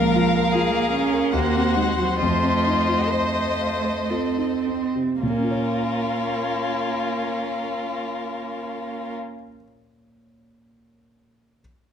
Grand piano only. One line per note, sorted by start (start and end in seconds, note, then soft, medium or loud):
0.00 1.29 C#2 medium
0.00 0.25 A#3 medium
0.16 0.45 F4 medium
0.35 0.65 A#4 soft
0.55 0.85 F4 medium
0.75 1.05 F5 medium
0.94 1.25 A#5 soft
1.13 1.33 A#4 soft
1.33 2.16 D#2 medium
1.56 1.89 C4 soft
1.76 2.10 D#4 soft
1.99 2.19 F#4 soft
2.22 5.20 F2 medium
2.43 2.78 C4 soft
2.66 3.02 D#4 soft
2.88 3.25 F4 soft
3.12 3.49 C5 soft
3.35 3.74 D#5 soft
3.61 4.00 F5 soft
3.84 4.26 C5 soft
4.10 4.54 F4 soft
4.37 4.83 D#4 soft
4.67 5.11 C4 soft
4.95 5.22 C3 soft
5.23 9.35 A#2 soft
5.30 9.42 A#3 soft
5.37 9.48 C#4 soft
5.44 9.55 F4 soft
5.51 9.63 C#5 soft